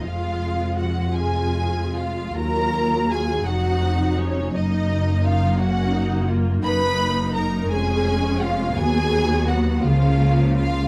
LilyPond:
<<
  \new Staff \with { instrumentName = "Violin section" } { \time 6/8 \key ees \minor \tempo 4. = 56 f''4 ges''8 aes''4 f''8 | bes''4 aes''8 ges''4 des''8 | ees''4 f''8 ges''4 r8 | ces'''4 bes''8 aes''4 f''8 |
aes''4 fis''8 f''4 f''8 | }
  \new Staff \with { instrumentName = "Violin section" } { \time 6/8 \key ees \minor f'4 ges'8 aes'4 f'8 | bes'4 aes'8 ges'4 des'8 | ees'4 f'8 ges'4 r8 | ces''4 bes'8 aes'4 f'8 |
aes'4 fis'8 f'4 f'8 | }
  \new Staff \with { instrumentName = "Viola section" } { \time 6/8 \key ees \minor << { f'4. f'4.~ | f'4. ees'4. | ees'4. des'8 ees'8 f'8 | ees'4. des'4. |
b4. bes4. | } \\ { aes4. aes4. | ges2. | bes2.~ | bes4. aes4. |
fis4. f4. | } >> }
  \new Staff \with { instrumentName = "Cello section" } { \clef bass \time 6/8 \key ees \minor f,2. | ees,4. f,4. | ges,2. | ges,4. f,4. |
dis,4. des4. | }
  \new Staff \with { instrumentName = "Double bass section" } { \clef bass \time 6/8 \key ees \minor f,,2. | ees,4. f,,4. | ges,,2. | ges,,4. f,,4. |
dis,4. des,4. | }
>>